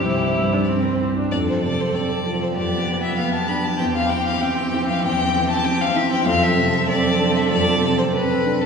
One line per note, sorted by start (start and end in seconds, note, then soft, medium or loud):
0.00 0.05 C2 soft
0.00 0.39 G2 soft
0.00 1.08 E3 soft
0.00 0.70 C4 soft
0.00 0.25 E4 soft
0.00 1.08 G4 soft
0.00 0.64 C5 soft
0.04 1.28 C2 soft
0.04 0.55 E4 soft
0.39 0.88 G2 soft
0.53 0.70 D4 soft
0.63 0.74 D5 soft
0.69 1.16 C4 soft
0.69 1.20 C4 soft
0.69 0.83 C5 soft
0.82 0.94 A#4 soft
0.92 1.01 C5 soft
1.01 1.32 E4 soft
1.17 1.32 D4 soft
1.31 2.53 F2 soft
1.31 3.76 F3 soft
1.31 2.53 A4 soft
1.31 1.38 D5 medium
1.49 1.63 C5 soft
1.64 2.13 C3 soft
1.64 1.82 D5 medium
1.80 1.96 C5 medium
1.95 2.44 C4 soft
1.95 2.41 D5 medium
2.26 2.57 F4 soft
2.42 2.48 C5 medium
2.56 3.77 F2 soft
2.56 3.76 B3 soft
2.56 6.22 G4 soft
2.56 3.02 D5 medium
2.87 3.37 F3 soft
3.03 3.17 E5 medium
3.17 3.68 B3 soft
3.17 3.33 F5 medium
3.34 3.49 A5 medium
3.48 3.80 D4 soft
3.48 3.66 B5 medium
3.64 3.77 A5 medium
3.78 4.99 E2 soft
3.78 6.22 E3 soft
3.78 8.66 C4 soft
3.78 3.85 G5 medium
3.95 4.11 F5 medium
4.09 4.61 E3 soft
4.09 4.25 G5 medium
4.26 4.42 F5 medium
4.41 4.91 C4 soft
4.41 4.87 G5 medium
4.74 5.22 E4 soft
4.89 5.03 F5 medium
5.04 6.23 E2 soft
5.04 5.49 G5 medium
5.35 5.84 E3 soft
5.50 5.66 A5 medium
5.64 6.14 C4 soft
5.64 5.83 G5 medium
5.81 5.98 F5 medium
5.95 6.26 E4 soft
5.95 6.11 E5 medium
6.12 6.26 G5 medium
6.25 7.46 F2 medium
6.25 8.66 F3 medium
6.25 8.66 A4 medium
6.25 6.44 F5 medium
6.43 6.88 E5 medium
6.57 7.06 C3 soft
6.88 7.38 C4 medium
6.88 7.37 D5 medium
7.19 7.69 D4 soft
7.36 7.49 E5 medium
7.50 8.66 F2 soft
7.50 7.96 D5 medium
7.81 8.32 C3 soft
7.98 8.04 C5 medium
8.13 8.64 C4 soft
8.13 8.63 B4 medium
8.45 8.66 D4 soft
8.61 8.66 A4 medium